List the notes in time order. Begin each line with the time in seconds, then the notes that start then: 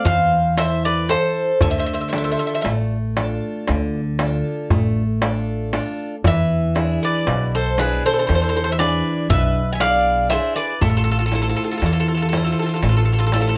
Already playing: C4 A4 C5
0.05 E2 E3 C5 F5, darbuka dum
0.57 E4 A4 C5 E5, darbuka tek
0.85 B4 D5
1.08 E4 A4 C5, darbuka tek
1.61 D2 D3 A4 E5, darbuka dum
1.70 C5 E5
1.78 C5 E5
1.86 C5 E5
1.93 C5 E5
2.00 C5 E5
2.08 C5 E5
2.13 D4 F4 A4 C5, darbuka tek
2.18 E5
2.24 C5 E5
2.31 C5 E5
2.39 C5 E5
2.47 C5 E5
2.54 C5 E5
2.61 A3 C5 E5, darbuka tek
2.65 A1
3.16 D4 F4 A4, darbuka tek
3.67 D2 D3, darbuka tek
3.94 darbuka tek
4.19 D4 F4 A4, darbuka tek
4.70 A1 A3, darbuka dum
5.22 D4 F4 A4, darbuka tek
5.73 D4 F4 A4, darbuka tek
6.24 E2 E3 B4 E5, darbuka dum
6.75 D4 E4 G#4, darbuka tek
7.03 B4 D5
7.27 B1 B2, darbuka tek
7.55 A4 C5
7.78 D4 E4 G#4 B4, darbuka tek
8.06 A4 C5
8.13 A4 C5
8.19 A4 C5
8.27 E2 E3 A4 C5, darbuka tek
8.34 A4 C5
8.42 A4 C5
8.49 A4 C5
8.54 A4 C5, darbuka tek
8.64 A4 C5
8.72 C5 E5
8.79 D4 E4 G#4 B4 D5, darbuka tek
9.30 B1 B2 B4 E5, darbuka dum
9.73 E5 G#5
9.80 D4 E4 G#4 D5 F5, darbuka tek
10.30 D4 E4 G#4 C5 E5, darbuka tek
10.56 B4 D5
10.81 A1 A3 E4 A4, darbuka dum
10.90 F4 A4
10.97 F4 A4
11.04 F4 A4, darbuka tek
11.11 F4 A4
11.19 F4 A4
11.26 F4 A4
11.32 E4 F4 A4 C5, darbuka tek
11.42 F4 A4
11.49 F4 A4
11.56 F4 A4, darbuka tek
11.64 F4 A4
11.71 F4 A4
11.77 F4 A4
11.82 E2 E3 A4, darbuka tek
11.86 F4
11.93 F4 A4
12.00 F4 A4
12.08 F4 A4
12.14 F4 A4
12.22 F4 A4
12.29 E4 F4 A4
12.33 A4 C5, darbuka tek
12.37 F4 A4
12.44 F4 A4
12.52 F4 A4
12.59 F4 A4
12.66 F4 A4
12.74 F4 A4
12.82 A1 A3 F4 A4, darbuka tek
12.89 F4 A4
12.97 F4 A4
13.05 F4 A4, darbuka tek
13.12 F4 A4
13.18 F4 A4
13.26 F4 A4
13.32 E4 F4 A4 C5, darbuka tek
13.40 F4 A4
13.47 F4 A4